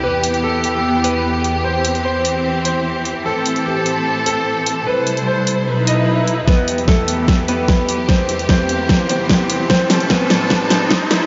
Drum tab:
HH |--xx--x---x---x-|--xx--x---x---x-|--xx--x---x---x-|--xx--x---x---x-|
SD |----------------|----------------|----------------|----------------|
BD |----------------|----------------|----------------|----------------|

HH |--xx--x---x---x-|--xx--x---x---x-|--xx--x---x---x-|
SD |o---o---o---o---|o---o---o---o---|o-o-o-o-o-o-o-o-|
BD |o---o---o---o---|o---o---o---o---|o---o---o---o---|